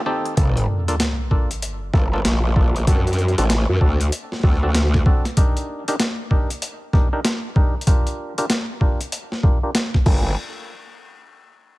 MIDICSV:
0, 0, Header, 1, 6, 480
1, 0, Start_track
1, 0, Key_signature, -2, "minor"
1, 0, Tempo, 625000
1, 286, Time_signature, 4, 2, 24, 8
1, 9048, End_track
2, 0, Start_track
2, 0, Title_t, "Clav"
2, 0, Program_c, 0, 7
2, 46, Note_on_c, 0, 60, 93
2, 47, Note_on_c, 0, 63, 85
2, 47, Note_on_c, 0, 67, 87
2, 47, Note_on_c, 0, 69, 103
2, 265, Note_off_c, 0, 60, 0
2, 265, Note_off_c, 0, 63, 0
2, 265, Note_off_c, 0, 67, 0
2, 265, Note_off_c, 0, 69, 0
2, 287, Note_on_c, 0, 62, 63
2, 288, Note_on_c, 0, 58, 69
2, 288, Note_on_c, 0, 65, 66
2, 288, Note_on_c, 0, 69, 78
2, 641, Note_off_c, 0, 62, 0
2, 641, Note_off_c, 0, 69, 0
2, 642, Note_off_c, 0, 58, 0
2, 642, Note_off_c, 0, 65, 0
2, 678, Note_on_c, 0, 58, 84
2, 678, Note_on_c, 0, 62, 79
2, 678, Note_on_c, 0, 65, 77
2, 678, Note_on_c, 0, 69, 90
2, 731, Note_off_c, 0, 58, 0
2, 731, Note_off_c, 0, 62, 0
2, 731, Note_off_c, 0, 65, 0
2, 731, Note_off_c, 0, 69, 0
2, 1008, Note_on_c, 0, 58, 70
2, 1008, Note_on_c, 0, 62, 64
2, 1008, Note_on_c, 0, 65, 63
2, 1008, Note_on_c, 0, 69, 78
2, 1151, Note_off_c, 0, 58, 0
2, 1151, Note_off_c, 0, 62, 0
2, 1151, Note_off_c, 0, 65, 0
2, 1151, Note_off_c, 0, 69, 0
2, 1486, Note_on_c, 0, 65, 64
2, 1487, Note_on_c, 0, 58, 70
2, 1487, Note_on_c, 0, 62, 63
2, 1487, Note_on_c, 0, 69, 77
2, 1601, Note_off_c, 0, 58, 0
2, 1601, Note_off_c, 0, 62, 0
2, 1601, Note_off_c, 0, 65, 0
2, 1601, Note_off_c, 0, 69, 0
2, 1638, Note_on_c, 0, 58, 87
2, 1638, Note_on_c, 0, 65, 79
2, 1639, Note_on_c, 0, 62, 80
2, 1639, Note_on_c, 0, 69, 93
2, 1691, Note_off_c, 0, 58, 0
2, 1691, Note_off_c, 0, 65, 0
2, 1692, Note_off_c, 0, 62, 0
2, 1692, Note_off_c, 0, 69, 0
2, 1966, Note_on_c, 0, 58, 74
2, 1967, Note_on_c, 0, 62, 67
2, 1967, Note_on_c, 0, 65, 68
2, 1967, Note_on_c, 0, 69, 82
2, 2111, Note_off_c, 0, 58, 0
2, 2111, Note_off_c, 0, 62, 0
2, 2111, Note_off_c, 0, 65, 0
2, 2111, Note_off_c, 0, 69, 0
2, 2206, Note_on_c, 0, 60, 70
2, 2206, Note_on_c, 0, 62, 65
2, 2206, Note_on_c, 0, 66, 66
2, 2206, Note_on_c, 0, 69, 78
2, 2560, Note_off_c, 0, 62, 0
2, 2560, Note_off_c, 0, 69, 0
2, 2561, Note_off_c, 0, 60, 0
2, 2561, Note_off_c, 0, 66, 0
2, 2597, Note_on_c, 0, 62, 78
2, 2597, Note_on_c, 0, 66, 79
2, 2598, Note_on_c, 0, 60, 85
2, 2598, Note_on_c, 0, 69, 94
2, 2651, Note_off_c, 0, 60, 0
2, 2651, Note_off_c, 0, 62, 0
2, 2651, Note_off_c, 0, 66, 0
2, 2651, Note_off_c, 0, 69, 0
2, 2926, Note_on_c, 0, 62, 65
2, 2926, Note_on_c, 0, 69, 76
2, 2927, Note_on_c, 0, 60, 70
2, 2927, Note_on_c, 0, 66, 65
2, 3070, Note_off_c, 0, 62, 0
2, 3071, Note_off_c, 0, 60, 0
2, 3071, Note_off_c, 0, 66, 0
2, 3071, Note_off_c, 0, 69, 0
2, 3406, Note_on_c, 0, 60, 70
2, 3406, Note_on_c, 0, 62, 64
2, 3406, Note_on_c, 0, 66, 64
2, 3406, Note_on_c, 0, 69, 78
2, 3520, Note_off_c, 0, 60, 0
2, 3520, Note_off_c, 0, 66, 0
2, 3521, Note_off_c, 0, 62, 0
2, 3521, Note_off_c, 0, 69, 0
2, 3556, Note_on_c, 0, 60, 86
2, 3556, Note_on_c, 0, 62, 79
2, 3556, Note_on_c, 0, 66, 78
2, 3556, Note_on_c, 0, 69, 95
2, 3610, Note_off_c, 0, 60, 0
2, 3610, Note_off_c, 0, 62, 0
2, 3610, Note_off_c, 0, 66, 0
2, 3610, Note_off_c, 0, 69, 0
2, 3886, Note_on_c, 0, 60, 74
2, 3886, Note_on_c, 0, 62, 68
2, 3886, Note_on_c, 0, 66, 67
2, 3887, Note_on_c, 0, 69, 82
2, 4030, Note_off_c, 0, 60, 0
2, 4030, Note_off_c, 0, 62, 0
2, 4030, Note_off_c, 0, 66, 0
2, 4031, Note_off_c, 0, 69, 0
2, 4127, Note_on_c, 0, 67, 65
2, 4128, Note_on_c, 0, 62, 75
2, 4128, Note_on_c, 0, 63, 69
2, 4128, Note_on_c, 0, 70, 79
2, 4481, Note_off_c, 0, 62, 0
2, 4481, Note_off_c, 0, 67, 0
2, 4482, Note_off_c, 0, 63, 0
2, 4482, Note_off_c, 0, 70, 0
2, 4518, Note_on_c, 0, 62, 87
2, 4518, Note_on_c, 0, 67, 80
2, 4518, Note_on_c, 0, 70, 97
2, 4519, Note_on_c, 0, 63, 80
2, 4571, Note_off_c, 0, 62, 0
2, 4571, Note_off_c, 0, 63, 0
2, 4571, Note_off_c, 0, 67, 0
2, 4571, Note_off_c, 0, 70, 0
2, 4846, Note_on_c, 0, 63, 66
2, 4846, Note_on_c, 0, 67, 65
2, 4847, Note_on_c, 0, 62, 70
2, 4847, Note_on_c, 0, 70, 78
2, 4990, Note_off_c, 0, 63, 0
2, 4990, Note_off_c, 0, 67, 0
2, 4991, Note_off_c, 0, 62, 0
2, 4991, Note_off_c, 0, 70, 0
2, 5325, Note_on_c, 0, 67, 66
2, 5326, Note_on_c, 0, 62, 72
2, 5326, Note_on_c, 0, 63, 64
2, 5326, Note_on_c, 0, 70, 77
2, 5440, Note_off_c, 0, 62, 0
2, 5440, Note_off_c, 0, 63, 0
2, 5440, Note_off_c, 0, 67, 0
2, 5440, Note_off_c, 0, 70, 0
2, 5475, Note_on_c, 0, 62, 88
2, 5476, Note_on_c, 0, 63, 83
2, 5476, Note_on_c, 0, 67, 80
2, 5476, Note_on_c, 0, 70, 96
2, 5530, Note_off_c, 0, 62, 0
2, 5530, Note_off_c, 0, 63, 0
2, 5530, Note_off_c, 0, 67, 0
2, 5530, Note_off_c, 0, 70, 0
2, 5806, Note_on_c, 0, 62, 76
2, 5806, Note_on_c, 0, 63, 70
2, 5806, Note_on_c, 0, 67, 69
2, 5807, Note_on_c, 0, 70, 80
2, 5950, Note_off_c, 0, 62, 0
2, 5950, Note_off_c, 0, 63, 0
2, 5950, Note_off_c, 0, 67, 0
2, 5951, Note_off_c, 0, 70, 0
2, 6046, Note_on_c, 0, 70, 82
2, 6047, Note_on_c, 0, 62, 75
2, 6047, Note_on_c, 0, 65, 67
2, 6047, Note_on_c, 0, 67, 67
2, 6401, Note_off_c, 0, 62, 0
2, 6401, Note_off_c, 0, 65, 0
2, 6401, Note_off_c, 0, 67, 0
2, 6401, Note_off_c, 0, 70, 0
2, 6437, Note_on_c, 0, 67, 80
2, 6438, Note_on_c, 0, 62, 87
2, 6438, Note_on_c, 0, 65, 80
2, 6438, Note_on_c, 0, 70, 97
2, 6491, Note_off_c, 0, 62, 0
2, 6491, Note_off_c, 0, 65, 0
2, 6491, Note_off_c, 0, 67, 0
2, 6491, Note_off_c, 0, 70, 0
2, 6767, Note_on_c, 0, 62, 73
2, 6767, Note_on_c, 0, 65, 66
2, 6767, Note_on_c, 0, 67, 66
2, 6767, Note_on_c, 0, 70, 78
2, 6911, Note_off_c, 0, 62, 0
2, 6911, Note_off_c, 0, 65, 0
2, 6911, Note_off_c, 0, 67, 0
2, 6911, Note_off_c, 0, 70, 0
2, 7247, Note_on_c, 0, 62, 69
2, 7247, Note_on_c, 0, 65, 65
2, 7247, Note_on_c, 0, 67, 65
2, 7248, Note_on_c, 0, 70, 80
2, 7361, Note_off_c, 0, 62, 0
2, 7361, Note_off_c, 0, 65, 0
2, 7361, Note_off_c, 0, 67, 0
2, 7362, Note_off_c, 0, 70, 0
2, 7398, Note_on_c, 0, 65, 79
2, 7398, Note_on_c, 0, 67, 81
2, 7399, Note_on_c, 0, 62, 86
2, 7399, Note_on_c, 0, 70, 96
2, 7451, Note_off_c, 0, 65, 0
2, 7451, Note_off_c, 0, 67, 0
2, 7451, Note_off_c, 0, 70, 0
2, 7452, Note_off_c, 0, 62, 0
2, 7728, Note_on_c, 0, 65, 78
2, 7728, Note_on_c, 0, 69, 93
2, 7729, Note_on_c, 0, 58, 86
2, 7729, Note_on_c, 0, 62, 75
2, 7917, Note_off_c, 0, 65, 0
2, 7917, Note_off_c, 0, 69, 0
2, 7918, Note_off_c, 0, 58, 0
2, 7918, Note_off_c, 0, 62, 0
2, 9048, End_track
3, 0, Start_track
3, 0, Title_t, "String section"
3, 0, Program_c, 1, 48
3, 0, Note_on_c, 1, 51, 81
3, 0, Note_on_c, 1, 57, 75
3, 0, Note_on_c, 1, 65, 92
3, 275, Note_off_c, 1, 51, 0
3, 275, Note_off_c, 1, 57, 0
3, 276, Note_off_c, 1, 65, 0
3, 9048, End_track
4, 0, Start_track
4, 0, Title_t, "Wobble bass"
4, 0, Program_c, 2, 39
4, 287, Note_on_c, 2, 31, 93
4, 512, Note_off_c, 2, 31, 0
4, 1486, Note_on_c, 2, 31, 94
4, 1712, Note_off_c, 2, 31, 0
4, 1726, Note_on_c, 2, 34, 97
4, 2192, Note_off_c, 2, 34, 0
4, 2206, Note_on_c, 2, 42, 96
4, 2572, Note_off_c, 2, 42, 0
4, 2597, Note_on_c, 2, 33, 95
4, 2813, Note_off_c, 2, 33, 0
4, 2836, Note_on_c, 2, 42, 93
4, 2911, Note_off_c, 2, 42, 0
4, 2926, Note_on_c, 2, 38, 98
4, 3152, Note_off_c, 2, 38, 0
4, 3405, Note_on_c, 2, 38, 97
4, 3871, Note_off_c, 2, 38, 0
4, 7727, Note_on_c, 2, 31, 94
4, 7950, Note_off_c, 2, 31, 0
4, 9048, End_track
5, 0, Start_track
5, 0, Title_t, "Sub drop"
5, 0, Program_c, 3, 103
5, 285, Note_on_c, 3, 60, 72
5, 2206, Note_off_c, 3, 60, 0
5, 9048, End_track
6, 0, Start_track
6, 0, Title_t, "Drums"
6, 196, Note_on_c, 9, 42, 37
6, 273, Note_off_c, 9, 42, 0
6, 286, Note_on_c, 9, 36, 114
6, 286, Note_on_c, 9, 42, 78
6, 362, Note_off_c, 9, 42, 0
6, 363, Note_off_c, 9, 36, 0
6, 437, Note_on_c, 9, 42, 37
6, 514, Note_off_c, 9, 42, 0
6, 678, Note_on_c, 9, 42, 54
6, 754, Note_off_c, 9, 42, 0
6, 767, Note_on_c, 9, 38, 117
6, 767, Note_on_c, 9, 42, 80
6, 844, Note_off_c, 9, 38, 0
6, 844, Note_off_c, 9, 42, 0
6, 1006, Note_on_c, 9, 36, 61
6, 1083, Note_off_c, 9, 36, 0
6, 1158, Note_on_c, 9, 42, 55
6, 1235, Note_off_c, 9, 42, 0
6, 1247, Note_on_c, 9, 42, 80
6, 1324, Note_off_c, 9, 42, 0
6, 1486, Note_on_c, 9, 36, 102
6, 1486, Note_on_c, 9, 40, 42
6, 1563, Note_off_c, 9, 36, 0
6, 1563, Note_off_c, 9, 40, 0
6, 1727, Note_on_c, 9, 38, 117
6, 1727, Note_on_c, 9, 42, 82
6, 1804, Note_off_c, 9, 38, 0
6, 1804, Note_off_c, 9, 42, 0
6, 1966, Note_on_c, 9, 36, 102
6, 2043, Note_off_c, 9, 36, 0
6, 2118, Note_on_c, 9, 42, 36
6, 2194, Note_off_c, 9, 42, 0
6, 2206, Note_on_c, 9, 36, 118
6, 2206, Note_on_c, 9, 42, 78
6, 2283, Note_off_c, 9, 36, 0
6, 2283, Note_off_c, 9, 42, 0
6, 2358, Note_on_c, 9, 42, 34
6, 2403, Note_off_c, 9, 42, 0
6, 2403, Note_on_c, 9, 42, 29
6, 2446, Note_off_c, 9, 42, 0
6, 2446, Note_on_c, 9, 42, 25
6, 2522, Note_off_c, 9, 42, 0
6, 2522, Note_on_c, 9, 42, 20
6, 2596, Note_off_c, 9, 42, 0
6, 2596, Note_on_c, 9, 42, 55
6, 2673, Note_off_c, 9, 42, 0
6, 2686, Note_on_c, 9, 38, 118
6, 2686, Note_on_c, 9, 42, 82
6, 2763, Note_off_c, 9, 38, 0
6, 2763, Note_off_c, 9, 42, 0
6, 2926, Note_on_c, 9, 36, 64
6, 3003, Note_off_c, 9, 36, 0
6, 3076, Note_on_c, 9, 42, 53
6, 3153, Note_off_c, 9, 42, 0
6, 3166, Note_on_c, 9, 42, 81
6, 3243, Note_off_c, 9, 42, 0
6, 3318, Note_on_c, 9, 38, 36
6, 3326, Note_off_c, 9, 38, 0
6, 3326, Note_on_c, 9, 38, 29
6, 3376, Note_off_c, 9, 38, 0
6, 3376, Note_on_c, 9, 38, 25
6, 3405, Note_off_c, 9, 38, 0
6, 3405, Note_on_c, 9, 38, 19
6, 3406, Note_on_c, 9, 36, 106
6, 3456, Note_off_c, 9, 38, 0
6, 3456, Note_on_c, 9, 38, 16
6, 3483, Note_off_c, 9, 36, 0
6, 3485, Note_off_c, 9, 38, 0
6, 3485, Note_on_c, 9, 38, 13
6, 3561, Note_off_c, 9, 38, 0
6, 3644, Note_on_c, 9, 38, 123
6, 3644, Note_on_c, 9, 42, 83
6, 3721, Note_off_c, 9, 38, 0
6, 3721, Note_off_c, 9, 42, 0
6, 3795, Note_on_c, 9, 40, 52
6, 3796, Note_on_c, 9, 36, 64
6, 3872, Note_off_c, 9, 40, 0
6, 3873, Note_off_c, 9, 36, 0
6, 3885, Note_on_c, 9, 36, 109
6, 3962, Note_off_c, 9, 36, 0
6, 4035, Note_on_c, 9, 40, 39
6, 4035, Note_on_c, 9, 42, 38
6, 4112, Note_off_c, 9, 40, 0
6, 4112, Note_off_c, 9, 42, 0
6, 4123, Note_on_c, 9, 42, 78
6, 4125, Note_on_c, 9, 36, 122
6, 4200, Note_off_c, 9, 42, 0
6, 4202, Note_off_c, 9, 36, 0
6, 4275, Note_on_c, 9, 42, 35
6, 4352, Note_off_c, 9, 42, 0
6, 4515, Note_on_c, 9, 42, 54
6, 4592, Note_off_c, 9, 42, 0
6, 4604, Note_on_c, 9, 38, 125
6, 4604, Note_on_c, 9, 42, 79
6, 4681, Note_off_c, 9, 38, 0
6, 4681, Note_off_c, 9, 42, 0
6, 4845, Note_on_c, 9, 36, 65
6, 4921, Note_off_c, 9, 36, 0
6, 4995, Note_on_c, 9, 42, 53
6, 5072, Note_off_c, 9, 42, 0
6, 5084, Note_on_c, 9, 42, 81
6, 5161, Note_off_c, 9, 42, 0
6, 5325, Note_on_c, 9, 36, 108
6, 5325, Note_on_c, 9, 40, 38
6, 5402, Note_off_c, 9, 36, 0
6, 5402, Note_off_c, 9, 40, 0
6, 5565, Note_on_c, 9, 38, 121
6, 5565, Note_on_c, 9, 42, 81
6, 5642, Note_off_c, 9, 38, 0
6, 5642, Note_off_c, 9, 42, 0
6, 5805, Note_on_c, 9, 36, 108
6, 5882, Note_off_c, 9, 36, 0
6, 6000, Note_on_c, 9, 42, 37
6, 6045, Note_off_c, 9, 42, 0
6, 6045, Note_on_c, 9, 36, 120
6, 6045, Note_on_c, 9, 42, 75
6, 6121, Note_off_c, 9, 42, 0
6, 6122, Note_off_c, 9, 36, 0
6, 6195, Note_on_c, 9, 42, 35
6, 6272, Note_off_c, 9, 42, 0
6, 6435, Note_on_c, 9, 42, 51
6, 6512, Note_off_c, 9, 42, 0
6, 6525, Note_on_c, 9, 38, 124
6, 6525, Note_on_c, 9, 42, 78
6, 6602, Note_off_c, 9, 38, 0
6, 6602, Note_off_c, 9, 42, 0
6, 6766, Note_on_c, 9, 36, 65
6, 6842, Note_off_c, 9, 36, 0
6, 6917, Note_on_c, 9, 42, 52
6, 6993, Note_off_c, 9, 42, 0
6, 7006, Note_on_c, 9, 42, 76
6, 7083, Note_off_c, 9, 42, 0
6, 7157, Note_on_c, 9, 38, 38
6, 7234, Note_off_c, 9, 38, 0
6, 7246, Note_on_c, 9, 36, 108
6, 7322, Note_off_c, 9, 36, 0
6, 7486, Note_on_c, 9, 38, 124
6, 7486, Note_on_c, 9, 42, 79
6, 7562, Note_off_c, 9, 38, 0
6, 7562, Note_off_c, 9, 42, 0
6, 7636, Note_on_c, 9, 36, 65
6, 7637, Note_on_c, 9, 40, 50
6, 7713, Note_off_c, 9, 36, 0
6, 7714, Note_off_c, 9, 40, 0
6, 7726, Note_on_c, 9, 36, 113
6, 7726, Note_on_c, 9, 49, 85
6, 7803, Note_off_c, 9, 36, 0
6, 7803, Note_off_c, 9, 49, 0
6, 9048, End_track
0, 0, End_of_file